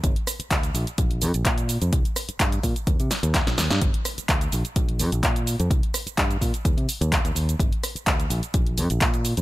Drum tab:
HH |xxoxxxoxxxoxxxox|xxoxxxoxxxoxxxox|xxoxxxoxxxoxxxox|xxoxxxoxxxoxxxox|
SH |x-xxxxxxx-xxxxxx|xxxxxxxxxxxxxxxx|x-xxxxxxx-xxxxxx|x-xxxxxxx-xxxxxx|
CP |----x-------x---|----x-------x---|----x-------x---|----x-------x---|
SD |--r-------------|--r-------o-oooo|--r-------------|--r-------------|
BD |o---o---o---o---|o---o-o-o---o---|o---o---o---o---|o---o-o-o---o---|

HH |xxoxxxoxxxoxxxox|
SH |x-xxxxxxx-xxxxxx|
CP |----x-------x---|
SD |--r-------------|
BD |o---o---o---o---|